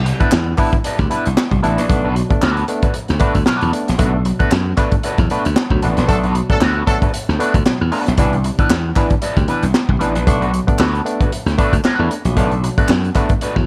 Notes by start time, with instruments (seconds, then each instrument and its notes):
Already playing: slap bass C2
0.05 tine electric piano C3 G3, muted clean electric guitar stroke, closed hi-hat
0.20 clean electric guitar G3 D4 E4 B4, tine electric piano B3 D4 E4, kick, closed hi-hat
0.31 slap bass E2, muted clean electric guitar stroke, snare, clap
0.57 clean electric guitar G3 D4 E4 B4, tine electric piano B3 D4 E4, kick, clap, open hi-hat
0.72 muted clean electric guitar stroke, kick, closed hi-hat
0.84 clean electric guitar G3 D4 E4 B4, tine electric piano D4 E4, closed hi-hat
0.98 slap bass D2, tine electric piano C3 G3, muted clean electric guitar stroke, kick, snare, closed hi-hat
1.10 clean electric guitar G3 D4 E4 B4, tine electric piano B3 D4 E4, closed hi-hat
1.25 slap bass C2, muted clean electric guitar stroke, closed hi-hat
1.37 tine electric piano D4 E4, muted clean electric guitar stroke, snare, clap
1.51 slap bass C2, tine electric piano C3 G3, muted clean electric guitar stroke, kick, closed hi-hat
1.63 slap bass A1, clean electric guitar G3 D4 E4 B4, tine electric piano B3 D4 E4, closed hi-hat
1.77 slap bass A#1, clean electric guitar G3 D4 E4 B4, closed hi-hat
1.89 slap bass B1, tine electric piano A3 B3 D4, muted clean electric guitar stroke, kick, closed hi-hat
2.04 clean electric guitar A3 D4 F#4 B4
2.15 tine electric piano B2 F#3, muted clean electric guitar stroke, closed hi-hat
2.30 tine electric piano A3 B3 D4, muted clean electric guitar stroke, kick, closed hi-hat
2.42 slap bass D2, clean electric guitar A3 D4 F#4 B4, snare, clap
2.57 closed hi-hat
2.68 tine electric piano A3 B3 D4, closed hi-hat
2.82 clean electric guitar A3 D4 F#4 B4, kick, closed hi-hat
2.94 muted clean electric guitar stroke, closed hi-hat
3.08 slap bass D2, snare, closed hi-hat
3.19 tine electric piano A3 B3 D4, clean electric guitar A3 D4 F#4 B4, kick, closed hi-hat
3.35 slap bass D2, muted clean electric guitar stroke, kick, closed hi-hat
3.46 tine electric piano B2 F#3, clean electric guitar A3 D4 F#4 B4, muted slap bass stroke, snare, clap
3.61 slap bass E2, closed hi-hat
3.73 tine electric piano A3 B3 D4, muted clean electric guitar stroke, closed hi-hat
3.88 slap bass A#1, tine electric piano B3 D4, muted clean electric guitar stroke, snare, closed hi-hat
3.98 slap bass B1, tine electric piano A3 B3 D4, clean electric guitar A3 D4 F#4 B4, kick, closed hi-hat
4.13 muted clean electric guitar stroke
4.25 tine electric piano B2 F#3, muted clean electric guitar stroke, closed hi-hat
4.39 tine electric piano A3 B3 D4, clean electric guitar A3 D4 F#4 B4, kick, closed hi-hat
4.51 slap bass F#2, snare, clap
4.77 clean electric guitar A3 D4 F#4 B4, tine electric piano A3 B3 D4, kick, clap, closed hi-hat
4.91 muted clean electric guitar stroke, kick, closed hi-hat
5.03 clean electric guitar A3 D4 F#4 B4, tine electric piano B3 D4, closed hi-hat
5.18 slap bass E2, tine electric piano B2 F#3, muted clean electric guitar stroke, kick, snare, closed hi-hat
5.30 tine electric piano A3 B3 D4, clean electric guitar A3 D4 F#4 B4, closed hi-hat
5.45 slap bass D2, muted clean electric guitar stroke, closed hi-hat
5.56 tine electric piano B3 D4, muted clean electric guitar stroke, snare, clap
5.70 slap bass D2, tine electric piano B2 F#3, muted clean electric guitar stroke, kick
5.82 slap bass A1, clean electric guitar A3 D4 F#4 B4, tine electric piano A3 B3 D4, closed hi-hat
5.97 slap bass A#1, clean electric guitar A3 D4 F#4 B4, snare, closed hi-hat
6.08 slap bass B1, horn section F#3 D4 A4, tine electric piano A3 B3 D4, muted clean electric guitar stroke, kick, closed hi-hat
6.24 clean electric guitar A3 D4 F#4 B4, closed hi-hat
6.34 tine electric piano B2 F#3, muted clean electric guitar stroke, closed hi-hat
6.50 horn section F#3 D4 A4, tine electric piano A3 B3 D4, muted clean electric guitar stroke, kick, closed hi-hat
6.61 slap bass D2, clean electric guitar A3 D4 F#4 B4, snare, clap
6.86 horn section F#3 D4 A4, tine electric piano A3 B3 D4, muted clean electric guitar stroke, kick, closed hi-hat
7.02 clean electric guitar A3 D4 F#4 B4, kick, closed hi-hat
7.13 muted clean electric guitar stroke, closed hi-hat
7.29 slap bass D2, snare
7.39 clean electric guitar A3 D4 F#4 B4, tine electric piano A3 B3 D4, closed hi-hat
7.54 slap bass D2, muted clean electric guitar stroke, kick, closed hi-hat
7.66 tine electric piano B2 F#3, muted clean electric guitar stroke, muted slap bass stroke, snare, clap
7.81 slap bass E2, muted clean electric guitar stroke
7.92 clean electric guitar A3 D4 F#4 B4, tine electric piano A3 B3 D4, open hi-hat
8.06 slap bass B1, tine electric piano B3 D4, muted clean electric guitar stroke, snare, closed hi-hat
8.18 slap bass C2, tine electric piano E3 B3 D4, clean electric guitar G3 D4 E4 B4, kick, closed hi-hat
8.33 muted clean electric guitar stroke, closed hi-hat
8.44 tine electric piano C3, muted clean electric guitar stroke, closed hi-hat
8.59 tine electric piano E3 B3 D4, clean electric guitar G3 D4 E4 B4, kick, closed hi-hat
8.70 slap bass E2, muted clean electric guitar stroke, snare, clap
8.96 tine electric piano E3 B3 D4, clean electric guitar G3 D4 E4 B4, kick, clap, closed hi-hat
9.10 muted clean electric guitar stroke, kick, closed hi-hat
9.22 clean electric guitar G3 D4 E4 B4, tine electric piano B3 D4, closed hi-hat
9.36 slap bass D2, tine electric piano C3, muted clean electric guitar stroke, kick, snare, closed hi-hat
9.48 tine electric piano E3 B3 D4, clean electric guitar G3 D4 E4 B4, closed hi-hat
9.63 slap bass C2, muted clean electric guitar stroke, closed hi-hat
9.74 tine electric piano B3 D4, muted clean electric guitar stroke, snare, clap
9.89 slap bass C2, tine electric piano C3, muted clean electric guitar stroke, kick
9.99 slap bass A1, tine electric piano E3 B3 D4, clean electric guitar G3 D4 E4 B4, closed hi-hat
10.15 slap bass A#1, clean electric guitar G3 D4 E4 B4, closed hi-hat
10.27 slap bass B1, tine electric piano A3 B3 D4, kick, closed hi-hat
10.41 clean electric guitar A3 D4 F#4 B4, closed hi-hat
10.52 tine electric piano B2 F#3, muted clean electric guitar stroke, closed hi-hat
10.67 tine electric piano A3 B3 D4, muted clean electric guitar stroke, kick, closed hi-hat
10.79 slap bass D2, clean electric guitar A3 D4 F#4 B4, snare, clap
10.95 closed hi-hat
11.05 tine electric piano A3 B3 D4, muted clean electric guitar stroke, closed hi-hat
11.20 clean electric guitar A3 D4 F#4 B4, kick, closed hi-hat
11.32 muted clean electric guitar stroke, closed hi-hat
11.46 slap bass D2, snare, closed hi-hat
11.58 tine electric piano A3 B3 D4, clean electric guitar A3 D4 F#4 B4, kick, closed hi-hat
11.73 slap bass D2, muted clean electric guitar stroke, kick, closed hi-hat
11.84 clean electric guitar A3 D4 F#4 B4, muted slap bass stroke, snare, clap
11.99 slap bass E2, tine electric piano A3 B3 D4
12.11 muted clean electric guitar stroke, closed hi-hat
12.25 slap bass A#1, tine electric piano B2 F#3, muted clean electric guitar stroke, closed hi-hat
12.36 slap bass B1, tine electric piano A3 B3 D4, clean electric guitar A3 D4 F#4 B4, kick, closed hi-hat
12.51 muted clean electric guitar stroke, closed hi-hat
12.63 tine electric piano B2 F#3, muted clean electric guitar stroke, closed hi-hat
12.77 tine electric piano A3 B3 D4, clean electric guitar A3 D4 F#4 B4, kick, closed hi-hat
12.88 slap bass F#2, snare, clap
13.04 closed hi-hat
13.15 tine electric piano A3 B3 D4, clean electric guitar A3 D4 F#4 B4, kick, clap, closed hi-hat
13.29 muted clean electric guitar stroke, kick, closed hi-hat
13.41 clean electric guitar A3 D4 F#4 B4, tine electric piano B3 D4, closed hi-hat
13.56 slap bass E2, tine electric piano B2 F#3, muted clean electric guitar stroke, kick, snare